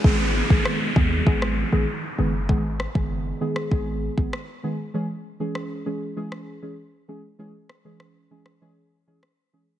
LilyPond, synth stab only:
\new Staff \with { instrumentName = "Synth stab" } { \time 4/4 \key gis \phrygian \tempo 4 = 98 <dis gis b gis'>16 r8 <dis gis b gis'>8. <dis gis b gis'>8 <dis gis b gis'>8. <dis gis b gis'>16 r8 <dis gis b gis'>16 r16 | <dis gis b gis'>16 r8 <dis gis b gis'>8. <dis gis b gis'>8 <dis gis b gis'>8. <dis gis b gis'>16 r8 <dis gis b gis'>16 r16 | <e gis cis' gis'>16 r8 <e gis cis' gis'>8. <e gis cis' gis'>8 <e gis cis' gis'>8. <e gis cis' gis'>16 r8 <e gis cis' gis'>16 r16 | <e gis cis' gis'>16 r8 <e gis cis' gis'>8. <e gis cis' gis'>8 <e gis cis' gis'>8. <e gis cis' gis'>16 r8 <e gis cis' gis'>16 r16 | }